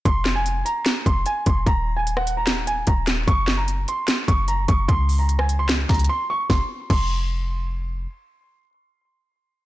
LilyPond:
<<
  \new Staff \with { instrumentName = "Grand piano" } { \time 4/4 \key f \phrygian \tempo 4 = 149 c'''8. aes''8. bes''4 c'''8 aes''8 c'''8 | bes''8. aes''8 ges''8 bes''8. aes''8 bes''8 r8 | des'''8. bes''8. c'''4 des'''8 bes''8 des'''8 | c'''8. bes''8 aes''8 c'''16 r8 bes''8 c'''8 des'''8 |
c'''8 r8 c'''2 r4 | r1 | }
  \new Staff \with { instrumentName = "808-style bass" } { \clef bass \time 4/4 \key f \phrygian f,,4. r4 f,,8 r8 f,,8 | ees,,2. ees,,4 | ges,,4. r4 ges,,4 ges,,8 | des,2~ des,8 des,8 r4 |
f,,8 r8 f,,2. | r1 | }
  \new DrumStaff \with { instrumentName = "Drums" } \drummode { \time 4/4 <hh bd>8 <hc sn>8 hh8 hh8 <hc hh sn>8 <hh bd>8 hh8 <hh bd>8 | <hh bd>4 hh16 ss16 hh8 <hc hh sn>8 hh8 <hh bd>8 <hc hh sn>8 | <hh bd>8 <hc sn>8 hh8 hh8 <hc hh sn>8 <hh bd>8 hh8 <hh bd>8 | <hh bd>8 hho8 hh16 ss16 hh8 <hc hh sn>8 <hh bd sn>32 hh32 hh32 hh32 r4 |
<bd sn>4 <cymc bd>4 r4 r4 | r4 r4 r4 r4 | }
>>